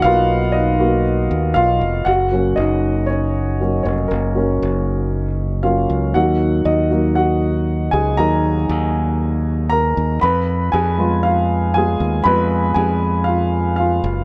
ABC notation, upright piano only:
X:1
M:4/4
L:1/8
Q:"Swing 16ths" 1/4=118
K:Cblyd
V:1 name="Upright piano"
[^E^e]2 [^D^d]4 [Ee]2 | [K:Gb] [Gg]2 [Ee]2 [Dd]3 [Dd] | [B,B]2 z4 [Ff]2 | [Gg]2 [Ee]2 [Gg]3 [Aa] |
[Bb]2 z4 [Bb]2 | [cc']2 [Aa]2 [Ff]2 [Aa]2 | [cc']2 [Aa]2 [Ff]2 [Ff]2 |]
V:2 name="Upright piano"
[^A,=B,^F] z2 [A,B,F] z4 | [K:Gb] z [G,B,D]4- [G,B,D] [G,B,D] z | z [G,B,D]4- [G,B,D] [G,B,D] z | [G,B,E]3 [G,B,E] z4 |
[G,B,E] z6 z | z3 [A,CF] z2 [A,CF] z | [A,CF]3 z4 z |]